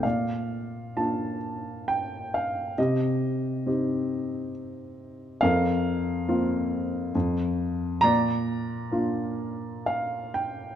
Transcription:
upright piano
0.03 A#2 D5 F5
0.96 A#3 D4 F4 A5
1.88 G5
2.34 F5
2.78 C3 G4 D#5
3.66 C4 D#4 G4
5.41 F2 A#4 F5
6.28 A#3 C4 F4
7.15 F2
8.01 A#2 D5 A#5
8.92 A#3 D4 F4
9.86 F5
10.34 G5

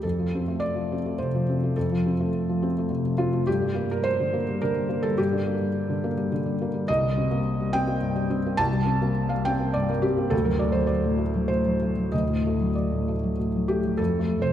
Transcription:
felt piano
0.03 F2 A4
0.19 F3
0.35 C4
0.48 A3
0.60 D5
0.76 F3
0.92 C4
1.06 A3
1.19 C3 C5
1.34 F3
1.49 C4
1.63 A3
1.76 F2 A4
1.92 F3
2.06 C4
2.20 A3
2.49 F3
2.63 C4
2.78 A3
2.90 C3
3.05 F3
3.18 C4 F4
3.33 A3
3.47 G2 G4
3.61 G3
3.75 A#3
3.91 G3 A#4
4.04 C5
4.20 D3
4.33 A#3
4.49 G3
4.62 D3 A#4
4.75 G3
4.89 A#3
5.03 G3 A4
5.18 G2 G4
5.33 D3
5.46 A#3
5.61 G3
5.90 D3
6.04 A#3
6.17 G3
6.32 D3
6.46 G3
6.62 A#3
6.74 G3
6.88 C2 D#5
7.03 G3
7.17 C4
7.31 A#3
7.60 G3
7.73 C4 G5
7.87 A#3
8.02 G2
8.15 G3
8.30 C4
8.46 A#3
8.57 C2 A5
8.73 G3
8.86 C4
9.02 A#3
9.29 G3 F5
9.45 C4 G5
9.60 A#3
9.74 G2 D5
9.90 G3 A#4
10.02 C4 G4
10.18 A#3
10.30 D2 A4
10.45 F#3 A#4
10.59 A3 D5
10.72 F#3 C5
10.87 D5
11.04 A2
11.18 A3
11.35 F#3
11.48 A2 C5
11.66 F#3
11.83 A3
11.97 F#3
12.12 D2 D#5
12.29 A2
12.47 A3
12.61 F#3
12.75 D5
12.92 A2
13.08 A3
13.23 F#3
13.39 A2
13.56 F#3
13.68 A3 G4
13.85 F#3
13.97 F2 A4
14.19 A3
14.40 C3 C5

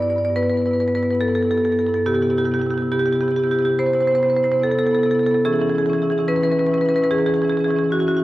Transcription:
marimba
0.01 G2 B3 D5
0.05 B3 E4
0.10 G2 E4 D5
0.16 G2 B3 D5
0.21 B3 E4 D5
0.29 G2 E4
0.36 G2 B3 E4 B4
0.43 G2 B3 E4 B4
0.50 B3 E4 B4
0.56 G2 E4 B4
0.62 B3
0.66 G2 E4 B4
0.71 B3 E4 B4
0.76 G2
0.80 B3 E4 B4
0.86 G2 B3 B4
0.90 E4
0.95 G2 B3 E4 B4
1.03 G2 B3 E4 B4
1.11 G2 B3 E4 B4
1.21 G2 B3 E4 A4
1.28 B3 E4 A4
1.32 G2 A4
1.38 G2 B3 E4
1.43 E4 A4
1.47 G2 B3 A4
1.52 B3 E4
1.58 G2 E4 A4
1.64 B3 E4 A4
1.70 G2 B3 A4
1.75 E4
1.79 G2 B3 E4 A4
1.87 G2 B3 E4 A4
1.94 G2 B3 E4 A4
2.06 C3 B3 E4 G4
2.14 C3 B3 E4 G4
2.22 C3 B3 E4 G4
2.30 C3 B3 E4 G4
2.37 B3 E4 G4
2.42 C3 E4 G4
2.47 B3
2.51 C3 B3 E4 G4
2.59 C3 B3 E4 G4
2.66 C3 B3 E4
2.70 E4 G4
2.77 C3 B3 G4
2.82 E4
2.91 C3 B3 E4 G4
2.99 C3 B3 E4 G4
3.05 B3 E4 G4
3.11 C3 B3 G4
3.15 E4
3.20 C3 B3 E4 G4
3.28 C3 B3 E4 G4
3.36 B3 E4 G4
3.42 C3 B3 G4
3.47 E4
3.51 C3 B3 E4 G4
3.59 C3 B3 E4 G4
3.65 B3 G4
3.69 C3 E4
3.78 C3 B3 E4 C5
3.86 C3 B3 E4 C5
3.93 C3 B3 E4 C5
4.00 E4 C5
4.05 C3 B3 C5
4.11 B3 E4
4.15 C3 E4 C5
4.20 B3 C5
4.25 C3 B3 E4
4.30 C3 C5
4.35 B3 E4 C5
4.43 C3 B3 E4 C5
4.51 C3 B3 E4 C5
4.59 C3 B3 E4 A4
4.67 C3 B3 E4 A4
4.75 B3 E4 A4
4.79 C3 E4
4.85 C3 B3 A4
4.91 B3 E4 A4
4.97 C3 B3 E4
5.03 C3 E4 A4
5.07 B3 A4
5.14 C3 B3 E4
5.19 B3 E4 A4
5.25 C3 A4
5.31 C3 B3 E4 A4
5.45 E3 C#4 E4 G#4
5.52 E3 C#4 E4 G#4
5.59 E3 C#4 E4 G#4
5.67 E3 C#4 E4 G#4
5.74 E3 C#4 E4 G#4
5.81 C#4 E4
5.86 E3 C#4 E4 G#4
5.93 E3 E4 G#4
5.98 C#4 G#4
6.03 E3 C#4 E4
6.10 E3 C#4 E4 G#4
6.18 E3 C#4 E4 G#4
6.28 E3 C#4 E4 B4
6.36 E3 C#4 E4 B4
6.42 E3 C#4 E4 B4
6.49 E3 C#4 E4 B4
6.57 E3 C#4 E4 B4
6.64 C#4 E4 B4
6.69 E3 E4
6.74 C#4 B4
6.78 E3 C#4 E4 B4
6.86 E3 C#4 E4 B4
6.94 E3 C#4 E4 B4
7.02 E3 E4 B4
7.11 E3 C#4 E4 G#4
7.18 E3 C#4 E4 G#4
7.26 E3 C#4 E4 G#4
7.34 C#4 E4 G#4
7.38 E3 G#4
7.43 C#4 E4
7.48 E3 G#4
7.52 C#4 E4
7.57 E3 C#4 E4 G#4
7.64 E3 C#4 G#4
7.69 E4 G#4
7.75 E3 C#4 E4 G#4
7.84 E3 C#4 E4
7.91 E3 C#4 E4 F#4
7.99 E3 C#4 E4 F#4
8.07 E3 C#4 E4 F#4
8.15 C#4 E4 F#4
8.20 E3

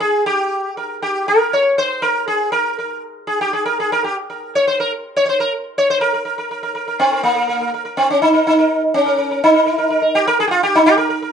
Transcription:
sitar
0.00 G#4
0.26 G4
0.77 A#4
1.02 G4
1.28 A#4
1.53 C#5
1.78 C5
2.02 A#4
2.28 G#4
2.52 A#4
2.79 A#4
3.27 G#4
3.41 G4
3.53 G#4
3.66 A#4
3.80 G#4
3.92 A#4
4.04 G4
4.30 A#4
4.55 C#5
4.67 C5
4.80 A#4
5.16 C#5
5.25 C5 C#5
5.40 A#4
5.78 C#5
5.90 C5
6.00 A#4
6.14 A#4
6.25 A#4
6.38 A#4
6.51 A#4
6.63 A#4
6.75 A#4
6.88 A#4
7.00 C4
7.12 A#4
7.23 A#3
7.36 A#4
7.49 A#4
7.61 A#4
7.74 A#4
7.85 A#4
7.97 C4
8.10 C#4
8.22 D#4
8.33 A#4
8.47 D#4
8.59 A#4
8.94 C#4
9.06 A#4
9.18 A#4
9.31 A#4
9.44 D#4
9.54 A#4
9.66 A#4
9.78 A#4
9.90 A#4
10.02 A#4
10.15 G4
10.27 A#4
10.40 G#4
10.48 F4 G4
10.63 G4
10.75 D#4
10.86 G4
10.98 A#4
11.10 A#4
11.22 A#4

